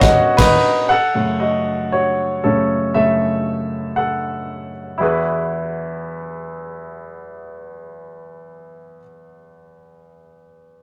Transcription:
Already playing: grand piano D#3 B3 C#4 F#4 C#5 F#5
0.00 fingered electric bass D#2, grand piano F#4 D#5, kick, snare
0.37 fingered electric bass D#2, grand piano D#4 B4, kick, snare, crash
0.89 grand piano A4 F#5
1.15 grand piano F#2 C#3 A3
1.40 grand piano F#4 D#5
1.92 grand piano F#4 C#5
2.44 grand piano F#2 C#3 A3 C#4 A4
2.94 grand piano F#2 C#3 A3 A4 E5
3.96 grand piano A4 F#5
4.98 grand piano E2 E4 F#4 G#4
5.03 grand piano B4

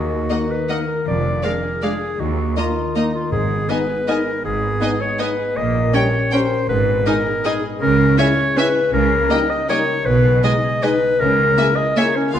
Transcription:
Already playing: cello section D#2, double bass section D#2, harp D#3 A#4 D#5, clarinet F#4
0.09 harp D#4
0.29 viola section A#3, french horn section A#3 D#4, harp A#4, violin section D#5 F#5
0.49 harp D#4, clarinet B4
0.68 viola section A#3, french horn section A#3 D#4, clarinet A#4, harp D#5, violin section D#5 F#5
0.88 harp A#4
1.06 double bass section F1, cello section F2, harp F3, clarinet D5
1.24 harp D4
1.43 viola section G#3, french horn section G#3 D4, clarinet A#4, harp D5, violin section D5 F5
1.63 harp G#4
1.82 viola section G#3, french horn section G#3 D4, clarinet G#4, harp D5, violin section D5 F5
2.01 harp G#4
2.19 cello section D#2, double bass section D#2, harp D#3, clarinet F#4
2.38 harp D#4
2.57 viola section A#3, french horn section A#3 D#4, clarinet F4, harp A#4, violin section D#5 A#5
2.76 harp D#4
2.95 viola section A#3, french horn section A#3 D#4, clarinet D#4, harp D#5, violin section D#5 A#5
3.14 clarinet F4, harp A#4
3.32 double bass section G#1, cello section G#2, harp G#2, timpani G#2, clarinet G#4
3.51 harp B3
3.69 viola section B3, french horn section B3 D#4, harp D#4, clarinet B4, violin section D#5 G#5
3.89 harp G#4
4.07 viola section B3, french horn section B3 D#4, clarinet A#4, harp B4, violin section D#5 G#5
4.27 harp G#4
4.44 double bass section G#1, cello section G#2, harp G#2, clarinet G#4
4.62 harp B3
4.80 french horn section B3 D#4, viola section B3, harp D#4, violin section D#5 G#5
5.01 harp G#4, clarinet C#5
5.19 french horn section B3 D#4, viola section B3, harp B4, clarinet B4, violin section D#5 G#5
5.39 harp G#4
5.56 double bass section A#1, harp A#2, cello section A#2, clarinet D#5
5.74 harp A#3
5.93 french horn section G3 C#4, viola section C#4, harp C#4, clarinet C#5, violin section G5
6.12 harp G4
6.31 french horn section G3 C#4, viola section C#4, harp A#4, clarinet C5, violin section G5
6.51 harp G4
6.69 double bass section G#1, cello section G#2, harp G#2, clarinet B4
6.88 harp B3
7.06 french horn section G#3 D#4, viola section D#4, harp D#4, clarinet A#4, violin section D#5 G#5
7.26 harp G#4
7.45 french horn section G#3 D#4, viola section D#4, clarinet G#4, harp B4, violin section D#5 G#5
7.64 harp G#4
7.81 double bass section C#2, harp C#3, cello section C#3, clarinet A#4
7.99 harp C#4
8.17 french horn section G#3 E4, viola section C#4, harp E4, clarinet C#5, violin section E5 G#5
8.37 harp G#4
8.56 french horn section G#3 E4, viola section C#4, clarinet B4, harp C#5, violin section E5 G#5
8.76 harp G#4
8.93 double bass section C#2, harp C#3, cello section C#3, clarinet A#4
9.11 harp A#3
9.30 french horn section G3 D#4, viola section A#3, harp D#4, violin section D#5 G5
9.50 harp G4, clarinet D#5
9.68 french horn section G3 D#4, viola section A#3, harp A#4, clarinet C#5, violin section D#5 G5
9.87 harp G4
10.06 double bass section B1, harp B2, cello section B2, clarinet B4
10.25 harp G#3
10.43 viola section G#3, french horn section G#3 D#4, harp D#4, violin section D#5 G#5, clarinet D#5
10.64 harp G#4
10.82 viola section G#3, french horn section G#3 D#4, harp D#4, clarinet B4, violin section D#5 G#5
11.02 harp G#4
11.20 double bass section C#2, cello section C#3, harp C#3, clarinet A#4
11.39 harp A#3
11.57 french horn section G#3 E4, viola section A#3, harp E4, violin section E5 G#5
11.76 harp G#4, clarinet D#5
11.96 french horn section G#3 E4, viola section A#3, harp A#4, clarinet C#5, violin section E5 G#5
12.15 clarinet C#4, harp G#4
12.32 double bass section D2, harp D3, cello section D3, viola section B3, clarinet F4, violin section F5 G#5

